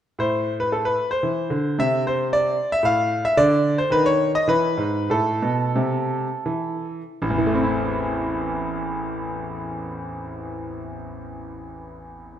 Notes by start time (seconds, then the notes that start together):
0.19 A2 C5
0.60 B4
0.72 A4
0.85 B4
1.11 C5
1.23 E3
1.50 D3
1.79 C3 E5
2.07 C5
2.33 D5
2.72 E5
2.83 A2 F5
3.25 E5
3.37 D3 D5
3.78 C5
3.90 D#3 B4
4.06 C#5
4.35 D#5
4.48 E3 B4
4.77 G#2
5.10 A2 A4
5.42 B2
5.76 C3
6.46 E3
7.22 A1
7.30 E2
7.38 E3
7.46 A3
7.55 C4
7.64 E4